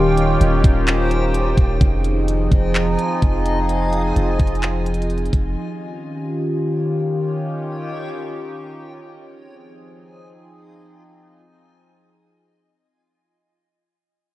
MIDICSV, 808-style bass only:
0, 0, Header, 1, 2, 480
1, 0, Start_track
1, 0, Key_signature, -4, "minor"
1, 0, Tempo, 468750
1, 1859, Time_signature, 4, 2, 24, 8
1, 14690, End_track
2, 0, Start_track
2, 0, Title_t, "808-style bass"
2, 0, Program_c, 0, 38
2, 0, Note_on_c, 0, 27, 99
2, 381, Note_off_c, 0, 27, 0
2, 418, Note_on_c, 0, 27, 105
2, 649, Note_off_c, 0, 27, 0
2, 659, Note_on_c, 0, 27, 105
2, 1581, Note_off_c, 0, 27, 0
2, 1616, Note_on_c, 0, 27, 98
2, 1848, Note_off_c, 0, 27, 0
2, 1858, Note_on_c, 0, 29, 117
2, 2549, Note_off_c, 0, 29, 0
2, 2579, Note_on_c, 0, 29, 106
2, 3039, Note_off_c, 0, 29, 0
2, 3300, Note_on_c, 0, 29, 105
2, 4221, Note_off_c, 0, 29, 0
2, 4260, Note_on_c, 0, 29, 102
2, 4490, Note_off_c, 0, 29, 0
2, 4502, Note_on_c, 0, 29, 108
2, 5422, Note_off_c, 0, 29, 0
2, 5457, Note_on_c, 0, 29, 101
2, 5688, Note_off_c, 0, 29, 0
2, 14690, End_track
0, 0, End_of_file